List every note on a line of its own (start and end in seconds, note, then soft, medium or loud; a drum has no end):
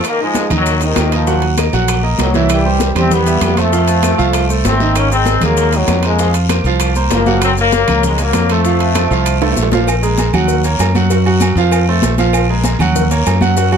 0.03 0.20 D#3 medium
0.03 0.21 A#3 loud
0.03 high bongo medium
0.03 high conga soft
0.03 high timbale medium
0.03 long guiro medium
0.03 claves medium
0.03 maracas medium
0.19 0.49 F3 medium
0.19 0.49 G#3 loud
0.19 0.45 D#4 medium
0.19 0.45 D#5 medium
0.19 high conga soft
0.34 high bongo medium
0.34 high conga medium
0.34 high timbale medium
0.34 low timbale medium
0.34 short guiro medium
0.34 maracas medium
0.50 0.93 D#2 medium
0.50 0.80 D#3 medium
0.50 0.76 D#4 medium
0.50 0.76 D#5 medium
0.50 low conga medium
0.50 high timbale medium
0.50 short guiro medium
0.50 claves medium
0.50 maracas soft
0.55 0.81 F#3 medium
0.65 high bongo medium
0.65 high conga soft
0.65 long guiro medium
0.65 maracas medium
0.81 1.13 C3 medium
0.81 1.13 D#3 medium
0.81 1.06 D#4 medium
0.81 1.07 D#5 medium
0.81 high conga soft
0.81 high timbale medium
0.81 maracas soft
0.96 1.68 D#2 medium
0.96 high bongo medium
0.96 low bongo medium
0.96 high conga medium
0.96 high timbale medium
0.96 low timbale medium
0.96 short guiro medium
0.96 claves medium
0.96 maracas medium
1.12 1.43 A#2 medium
1.12 1.44 F3 medium
1.12 1.24 A#3 medium
1.12 1.25 A#4 medium
1.12 1.25 D#5 medium
1.12 high timbale medium
1.12 short guiro medium
1.12 maracas soft
1.26 1.52 F#3 medium
1.26 1.53 F#4 medium
1.26 1.52 F#5 medium
1.26 high bongo medium
1.26 high conga soft
1.26 long guiro medium
1.26 maracas medium
1.42 high bongo soft
1.42 high conga soft
1.42 high timbale medium
1.57 1.71 A#3 medium
1.57 1.71 A#4 medium
1.57 1.71 D#5 medium
1.57 high bongo medium
1.57 high conga medium
1.57 high timbale medium
1.57 low timbale medium
1.57 short guiro medium
1.57 claves medium
1.57 maracas medium
1.73 2.16 A#1 medium
1.73 1.98 F#3 medium
1.73 1.98 F#4 medium
1.73 1.99 F#5 medium
1.73 high conga soft
1.73 short guiro medium
1.73 maracas soft
1.88 high bongo medium
1.88 high conga soft
1.88 high timbale medium
1.88 long guiro medium
1.88 claves medium
1.88 maracas medium
2.03 2.28 A#3 medium
2.03 2.29 A#4 medium
2.03 2.29 D#5 medium
2.03 high bongo soft
2.03 high conga soft
2.18 2.90 C2 medium
2.18 2.48 D#3 medium
2.18 2.48 F#3 medium
2.18 high bongo medium
2.18 low bongo medium
2.18 high conga medium
2.18 high timbale medium
2.18 low timbale medium
2.18 short guiro medium
2.18 maracas medium
2.34 2.60 E3 medium
2.34 2.60 E4 medium
2.34 2.60 E5 medium
2.34 high bongo soft
2.34 high conga medium
2.34 short guiro medium
2.34 maracas soft
2.49 2.94 E3 medium
2.49 2.93 G3 medium
2.49 high bongo medium
2.49 high conga soft
2.49 high timbale loud
2.49 long guiro medium
2.49 claves medium
2.49 maracas medium
2.65 2.90 G3 medium
2.65 2.91 G4 medium
2.65 2.91 C5 medium
2.65 high conga soft
2.80 high bongo medium
2.80 high conga medium
2.80 high timbale medium
2.80 low timbale medium
2.80 short guiro medium
2.80 maracas medium
2.95 3.38 E2 medium
2.95 3.21 G3 medium
2.95 3.12 A3 medium
2.95 3.12 C4 medium
2.95 3.21 G4 medium
2.95 3.22 C5 medium
2.95 low conga medium
2.95 high timbale medium
2.95 short guiro medium
2.95 claves medium
2.95 maracas soft
3.10 3.58 G3 medium
3.10 3.58 B3 loud
3.10 high bongo medium
3.10 high conga soft
3.10 low conga medium
3.10 long guiro medium
3.10 maracas medium
3.26 3.52 G3 medium
3.26 3.52 G4 medium
3.26 3.52 E5 medium
3.26 high conga soft
3.26 high timbale medium
3.26 maracas medium
3.41 4.13 F2 medium
3.41 high bongo medium
3.41 low bongo medium
3.41 high conga medium
3.41 high timbale medium
3.41 low timbale medium
3.41 short guiro medium
3.41 claves medium
3.41 maracas medium
3.57 4.50 F3 medium
3.57 3.70 A3 medium
3.57 4.50 A3 loud
3.57 3.70 A4 medium
3.57 3.70 C5 medium
3.57 high conga medium
3.57 high timbale medium
3.57 short guiro medium
3.57 maracas soft
3.72 3.98 F3 medium
3.72 3.98 F4 medium
3.72 3.98 F5 medium
3.72 high bongo medium
3.72 high conga soft
3.72 long guiro medium
3.72 maracas medium
3.87 high bongo soft
3.87 high conga soft
3.87 high timbale medium
3.87 maracas medium
4.03 4.16 A3 medium
4.03 4.16 A4 medium
4.03 4.16 C5 medium
4.03 high bongo medium
4.03 high conga medium
4.03 high timbale medium
4.03 low timbale medium
4.03 short guiro medium
4.03 claves medium
4.03 maracas medium
4.17 4.62 C2 loud
4.17 4.43 F3 loud
4.17 4.44 F4 medium
4.17 4.44 F5 medium
4.17 high conga soft
4.17 short guiro medium
4.17 maracas soft
4.33 high bongo medium
4.33 high conga soft
4.33 high timbale medium
4.33 long guiro medium
4.33 claves medium
4.33 maracas medium
4.49 4.75 A3 medium
4.49 4.75 A4 medium
4.49 4.75 C5 medium
4.49 high bongo soft
4.49 high conga soft
4.49 maracas medium
4.64 5.36 G#1 medium
4.64 4.95 A3 medium
4.64 4.94 C4 loud
4.64 high bongo medium
4.64 low bongo medium
4.64 high conga medium
4.64 high timbale medium
4.64 low timbale medium
4.64 short guiro medium
4.64 maracas medium
4.80 5.06 D#3 medium
4.80 5.06 D#4 medium
4.80 5.06 D#5 medium
4.80 high bongo soft
4.80 high conga medium
4.80 short guiro medium
4.80 maracas soft
4.96 5.12 A#3 medium
4.96 5.12 C#4 loud
4.96 high bongo medium
4.96 high conga soft
4.96 high timbale loud
4.96 long guiro medium
4.96 claves medium
4.96 maracas medium
5.11 5.37 G#3 medium
5.11 5.40 G#3 medium
5.11 5.40 C4 loud
5.11 5.37 G#4 medium
5.11 5.37 A#4 medium
5.11 high conga soft
5.11 maracas medium
5.25 high bongo medium
5.25 high conga medium
5.25 high timbale medium
5.25 low timbale medium
5.25 short guiro medium
5.25 maracas medium
5.41 5.85 D#2 loud
5.41 5.74 F#3 medium
5.41 5.67 G#3 medium
5.41 5.74 A#3 loud
5.41 5.68 G#4 medium
5.41 5.68 A#4 medium
5.41 low conga medium
5.41 high timbale medium
5.41 short guiro medium
5.41 claves medium
5.41 maracas soft
5.57 high bongo medium
5.57 high conga soft
5.57 long guiro medium
5.57 maracas medium
5.72 6.04 D#3 medium
5.72 6.04 F#3 medium
5.72 5.98 G#3 medium
5.72 5.98 G#4 medium
5.72 5.99 A#4 medium
5.72 high conga soft
5.72 high timbale medium
5.72 maracas medium
5.87 6.59 F2 medium
5.87 high bongo medium
5.87 low bongo medium
5.87 high conga medium
5.87 high timbale medium
5.87 low timbale medium
5.87 short guiro medium
5.87 claves medium
5.87 maracas medium
6.03 6.33 F3 medium
6.03 6.33 G#3 medium
6.03 6.16 A#3 medium
6.03 6.16 A#4 medium
6.03 6.17 C5 medium
6.03 high timbale medium
6.03 short guiro medium
6.03 maracas soft
6.18 6.44 F3 medium
6.18 6.45 F4 medium
6.18 6.45 F5 medium
6.18 high bongo medium
6.18 high conga soft
6.18 long guiro medium
6.18 maracas medium
6.34 high bongo soft
6.34 high conga soft
6.34 high timbale medium
6.34 maracas medium
6.49 6.63 A#3 medium
6.49 6.63 A#4 medium
6.49 6.63 C5 medium
6.49 high bongo medium
6.49 high conga medium
6.49 high timbale loud
6.49 low timbale medium
6.49 short guiro medium
6.49 claves medium
6.49 maracas medium
6.64 7.07 C2 loud
6.64 6.91 F3 medium
6.64 6.91 F4 medium
6.64 6.91 F5 medium
6.64 high conga soft
6.64 short guiro medium
6.64 maracas soft
6.80 high bongo medium
6.80 high conga soft
6.80 high timbale loud
6.80 long guiro medium
6.80 claves medium
6.80 maracas medium
6.95 7.21 A#3 medium
6.95 7.21 A#4 medium
6.95 7.22 C5 medium
6.95 high bongo soft
6.95 high conga soft
6.95 maracas medium
7.10 7.82 F#1 medium
7.10 7.40 F3 medium
7.10 7.40 A#3 medium
7.10 high bongo medium
7.10 low bongo medium
7.10 high conga medium
7.10 high timbale medium
7.10 low timbale medium
7.10 short guiro medium
7.10 maracas medium
7.26 7.52 F#3 medium
7.26 7.52 F#4 medium
7.26 7.52 F#5 medium
7.26 high bongo soft
7.26 high conga medium
7.26 short guiro medium
7.26 maracas soft
7.41 7.50 F#3 medium
7.41 7.50 C4 loud
7.41 high bongo medium
7.41 high conga soft
7.41 high timbale loud
7.41 long guiro medium
7.41 claves medium
7.41 maracas medium
7.57 8.01 F#3 medium
7.57 7.83 A#3 medium
7.57 8.01 A#3 loud
7.57 7.83 A#4 medium
7.57 7.83 C#5 medium
7.57 high conga soft
7.57 maracas medium
7.72 high bongo medium
7.72 high conga medium
7.72 high timbale medium
7.72 low timbale medium
7.72 short guiro medium
7.72 maracas medium
7.88 8.31 C#2 medium
7.88 8.14 A#3 medium
7.88 8.14 A#4 medium
7.88 8.14 C#5 medium
7.88 low conga medium
7.88 high timbale loud
7.88 short guiro medium
7.88 claves medium
7.88 maracas soft
8.03 8.18 D#3 medium
8.03 8.19 G#3 medium
8.03 high bongo medium
8.03 high conga soft
8.03 low conga medium
8.03 long guiro medium
8.03 maracas medium
8.18 8.51 F#3 medium
8.18 8.44 A#3 medium
8.18 8.44 A#4 medium
8.18 8.45 C#5 medium
8.18 high conga soft
8.18 high timbale medium
8.18 maracas medium
8.22 8.51 A#3 loud
8.33 9.05 F2 medium
8.33 high bongo medium
8.33 low bongo medium
8.33 high conga medium
8.33 high timbale medium
8.33 low timbale medium
8.33 short guiro medium
8.33 claves medium
8.33 maracas medium
8.49 9.58 F3 medium
8.49 8.63 A3 medium
8.49 9.59 A3 loud
8.49 8.63 A4 medium
8.49 8.63 C5 medium
8.49 high timbale medium
8.49 short guiro medium
8.49 maracas soft
8.65 8.90 F3 medium
8.65 8.91 F4 medium
8.65 8.91 F5 medium
8.65 high bongo medium
8.65 high conga soft
8.65 long guiro medium
8.65 maracas medium
8.80 high bongo soft
8.80 high conga soft
8.80 high timbale medium
8.95 9.08 A3 medium
8.95 9.09 A4 medium
8.95 9.09 C5 medium
8.95 high bongo loud
8.95 high conga medium
8.95 high timbale loud
8.95 low timbale medium
8.95 short guiro medium
8.95 claves medium
8.95 maracas medium
9.11 9.54 C2 loud
9.11 9.36 F3 medium
9.11 9.37 F4 medium
9.11 9.37 F5 medium
9.11 high conga soft
9.11 short guiro medium
9.11 maracas soft
9.26 high conga soft
9.26 high timbale medium
9.26 long guiro medium
9.26 claves medium
9.26 maracas medium
9.41 9.67 A3 medium
9.41 9.67 A4 medium
9.41 9.67 C5 medium
9.41 low bongo medium
9.41 high conga soft
9.41 high timbale loud
9.52 high conga medium
9.52 high timbale medium
9.57 10.29 A#1 medium
9.57 low bongo medium
9.57 short guiro medium
9.57 maracas medium
9.63 low timbale loud
9.72 9.85 F3 medium
9.72 9.85 F4 medium
9.72 9.85 F5 loud
9.72 low bongo loud
9.72 high conga medium
9.72 low timbale medium
9.72 short guiro medium
9.72 maracas soft
9.87 cowbell loud
9.87 high conga soft
9.87 low agogo loud
9.87 long guiro medium
9.87 claves medium
9.87 maracas medium
10.03 10.28 G#3 medium
10.03 10.28 G#4 medium
10.03 10.29 A#4 medium
10.03 high conga soft
10.03 maracas medium
10.18 cowbell medium
10.18 high conga loud
10.18 low timbale medium
10.18 low agogo medium
10.18 short guiro medium
10.18 maracas medium
10.33 10.76 D#2 medium
10.33 10.59 F#3 medium
10.33 10.60 F#4 medium
10.33 10.60 F#5 medium
10.33 low conga medium
10.33 low agogo loud
10.33 short guiro medium
10.33 claves medium
10.33 maracas soft
10.48 cowbell loud
10.48 long guiro medium
10.48 maracas medium
10.63 10.90 A#3 medium
10.63 10.90 A#4 medium
10.63 10.90 C#5 medium
10.63 cowbell medium
10.63 high conga soft
10.63 low agogo medium
10.63 maracas medium
10.79 11.51 F#2 medium
10.79 cowbell medium
10.79 high conga soft
10.79 low timbale medium
10.79 low agogo loud
10.79 short guiro medium
10.79 claves medium
10.79 maracas medium
10.95 11.08 F#3 medium
10.95 11.08 F#4 medium
10.95 11.09 F#5 loud
10.95 cowbell medium
10.95 high conga medium
10.95 short guiro medium
10.95 maracas soft
11.10 11.23 F#3 medium
11.10 11.24 F#4 medium
11.10 11.24 F#5 medium
11.10 cowbell loud
11.10 high conga soft
11.10 low agogo medium
11.10 long guiro medium
11.10 maracas medium
11.25 11.51 F#3 medium
11.25 11.52 F#4 loud
11.25 11.52 F#5 medium
11.25 high conga soft
11.25 low agogo medium
11.40 cowbell medium
11.40 high conga medium
11.40 low timbale medium
11.40 low agogo loud
11.40 short guiro medium
11.40 claves medium
11.40 maracas medium
11.55 11.99 F2 loud
11.55 11.83 F3 medium
11.55 11.83 F4 loud
11.55 11.83 F5 medium
11.55 cowbell medium
11.55 high conga soft
11.55 short guiro medium
11.55 maracas soft
11.71 cowbell loud
11.71 high conga soft
11.71 low agogo loud
11.71 long guiro medium
11.71 claves medium
11.71 maracas medium
11.87 12.13 A3 medium
11.87 12.14 A4 medium
11.87 12.14 C5 medium
11.87 high conga soft
12.02 12.74 A#1 medium
12.02 cowbell medium
12.02 high conga medium
12.02 low timbale medium
12.02 low agogo medium
12.02 short guiro medium
12.02 maracas medium
12.18 12.44 F3 loud
12.18 12.44 F4 medium
12.18 12.44 F5 medium
12.18 cowbell medium
12.18 high conga medium
12.18 low agogo medium
12.18 short guiro medium
12.18 maracas soft
12.33 cowbell loud
12.33 low agogo loud
12.33 long guiro medium
12.33 claves medium
12.33 maracas medium
12.49 12.75 G#3 medium
12.49 12.75 G#4 medium
12.49 12.75 A#4 medium
12.49 high conga soft
12.64 cowbell medium
12.64 high conga loud
12.64 low timbale medium
12.64 low agogo medium
12.64 short guiro medium
12.64 maracas medium
12.79 13.22 D#2 loud
12.79 13.06 F#3 medium
12.79 13.06 F#4 medium
12.79 13.06 F#5 loud
12.79 low conga medium
12.79 low agogo loud
12.79 short guiro medium
12.79 claves medium
12.79 maracas soft
12.96 cowbell loud
12.96 high conga soft
12.96 low conga medium
12.96 long guiro medium
12.96 maracas medium
13.11 13.36 A#3 medium
13.11 13.36 A#4 medium
13.11 13.36 C#5 medium
13.11 cowbell medium
13.11 high conga soft
13.11 low agogo medium
13.11 maracas medium
13.26 13.77 F#2 medium
13.26 cowbell medium
13.26 high conga soft
13.26 low timbale medium
13.26 low agogo loud
13.26 short guiro medium
13.26 claves medium
13.26 maracas medium
13.41 13.54 F#3 medium
13.41 13.54 F#4 medium
13.41 13.54 F#5 medium
13.41 cowbell medium
13.41 high conga medium
13.41 short guiro medium
13.41 maracas soft
13.57 13.70 F#3 medium
13.57 13.70 F#4 medium
13.57 13.70 F#5 medium
13.57 cowbell medium
13.57 high conga soft
13.57 low agogo medium
13.57 long guiro medium
13.57 maracas medium
13.72 13.77 F#3 medium
13.72 13.77 F#4 loud
13.72 13.77 F#5 loud
13.72 high conga soft
13.72 low agogo medium